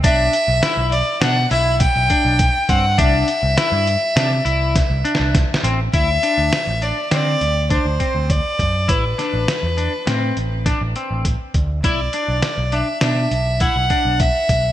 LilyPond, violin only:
\new Staff \with { instrumentName = "Violin" } { \time 5/4 \key e \minor \tempo 4 = 102 e''4. d''8 fis''8 e''8 g''4. fis''8 | e''1 r4 | e''4. d''8 d''4 c''4 d''4 | b'2. r2 |
d''4. e''8 e''4 fis''4 e''4 | }